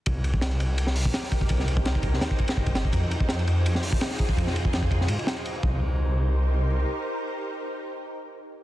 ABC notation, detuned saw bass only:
X:1
M:4/4
L:1/16
Q:1/4=167
K:Cm
V:1 name="Detuned saw bass" clef=bass
C,,6 C,,4- C,, B,,, z4 | C,,6 C,,2 E,, z3 G,,,4 | F,,6 F,,4- F,, E,, z4 | F,,6 F,,2 A,, z4 z C,,2- |
C,,12 z4 | z16 |]